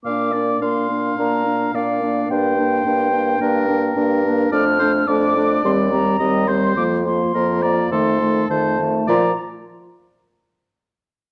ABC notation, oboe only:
X:1
M:4/4
L:1/8
Q:1/4=106
K:Bb
V:1 name="Oboe"
f d f4 d2 | c4 B4 | d c d4 e c- | c z B d A2 c z |
d z6 z |]